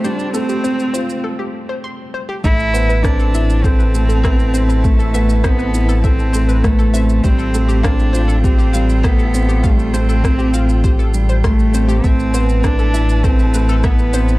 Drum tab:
SH |xxxxxxxx--------|xxxxxxxxxxxxxxxx|xxxxxxxxxxxxxxxx|xxxxxxxxxxxxxxxx|
SD |----------------|----r-------r---|----r-------r---|----r-------r---|
BD |----------------|o---o---o---o---|o---o---o---o---|o---o---o---o---|

SH |xxxxxxxxxxxxxxxx|xxxxxxxxxxxxxxxx|
SD |----r-------r---|----r-------r---|
BD |o---o---o---o---|o---o---o---o---|